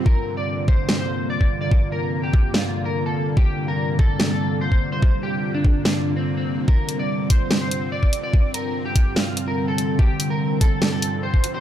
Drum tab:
HH |----------------|----------------|----------------|----------------|
SD |--------o-------|--------o-------|--------o-------|--------o-------|
BD |o-----o------o--|o-----o---------|o-----o------o--|o-----o---------|

HH |--x---x---x---x-|--x---x---x---x-|--x---x---x---x-|
SD |--------o-------|--------o-------|--------o-------|
BD |o-----o------o--|o-----o---------|o-----o------o--|